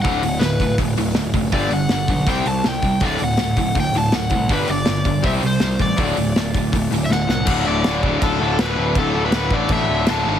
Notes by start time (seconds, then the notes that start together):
0.02 D1 D2 A2 D3 F#5, kick, open hi-hat
0.22 D1 D2 A2, open hi-hat
0.39 D1 D2 A2 B4, snare, open hi-hat
0.60 D1 D2 A2, kick, open hi-hat
0.78 D1 D2 A2, kick, open hi-hat
0.96 D1 D2 A2, open hi-hat
1.14 D1 D2 A2, snare, open hi-hat
1.34 F#1 D2 A2, kick, open hi-hat
1.52 G1 G2 D3 G3 D5, kick, open hi-hat
1.70 G1 G2 D3 F#5, open hi-hat
1.89 G1 G2 D3, snare, open hi-hat
2.07 B1 G2 D3, kick, open hi-hat
2.26 C2 C3 G3 C4, kick, open hi-hat
2.30 G5
2.46 C2 C3 G3 A5, open hi-hat
2.64 C2 C3 G3, snare, open hi-hat
2.68 G5
2.82 C2 C3 G3, kick, open hi-hat
3.00 D1 D2 A2 D3, kick, open hi-hat
3.06 D5
3.19 D1 D2 A2, open hi-hat
3.24 F#5
3.37 D1 D2 A2, snare, open hi-hat
3.56 D1 D2 A2, kick, open hi-hat
3.75 D1 D2 A2, kick, open hi-hat
3.80 G5
3.94 D1 D2 A2, open hi-hat
3.98 A5
4.12 D1 D2 A2 F#5, snare, open hi-hat
4.30 C2 D2 A2, kick, open hi-hat
4.49 G1 G2 D3 G3 B4, kick, open hi-hat
4.67 G1 G2 D3 D5, open hi-hat
4.85 G1 G2 D3, snare, open hi-hat
5.05 G1 G2 D3, kick, open hi-hat
5.22 C2 C3 G3 C4 E5, kick, open hi-hat
5.41 C2 C3 G3, open hi-hat
5.46 C5
5.60 C2 C3 G3, snare, open hi-hat
5.79 A1 C3 G3 D5, kick, open hi-hat
5.96 D1 D2 A2 D3, kick, open hi-hat
6.17 D1 D2 A2, open hi-hat
6.36 D1 D2 A2, snare, open hi-hat
6.54 D1 D2 A2, kick, open hi-hat
6.72 D1 D2 A2, kick, open hi-hat
6.91 D1 D2 A2, open hi-hat
7.06 E5
7.10 D1 D2 A2 F#5, snare
7.27 C2 D2 A2 F#5, snare
7.45 D1 D2 A2 D3, kick, crash
7.50 D2 D3
7.65 D1 D2 A2 D3 D5
7.70 A2
7.84 D1 D2 A2 D3, snare, crash
8.02 D2 A2 D3, kick
8.22 D1 D2 A2 D3 A4, kick, crash
8.40 D1 D2 A2 D3 A4
8.58 D1 D2 A2 D3 B4, snare, crash
8.77 D1 D2 A2 D3
8.95 D1 D2 A2 D3 A4, kick, crash
9.14 D1 D2 A2 D3
9.25 B4
9.32 D1 D2 A2 D3, snare, crash
9.51 A1 D2 A2 D3 D5, kick
9.69 A1 D2 A2 D3, kick, crash
9.73 E5
9.89 D1 D2 A2 D3
10.06 D1 D2 A2 D3 A5, snare, crash
10.27 G#1 D2 A2 D3 A5